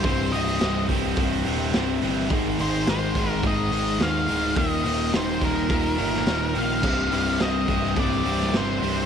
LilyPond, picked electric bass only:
\new Staff \with { instrumentName = "Picked electric bass" } { \clef bass \time 4/4 \key c \minor \tempo 4 = 106 c,,8 c,,8 c,,4 c,,8 ees,,8 c,,8 g,,8 | aes,,8 aes,,8 aes,,8 aes,,8 aes,,8 aes,,8 ees,8 d,,8 | ees,,8 ees,,8 ees,,4 ees,,8 g,,8 ees,,8 bes,,8 | c,,8 c,,8 c,,8 c,,8 c,,8 c,,8 g,,8 c,,8 | }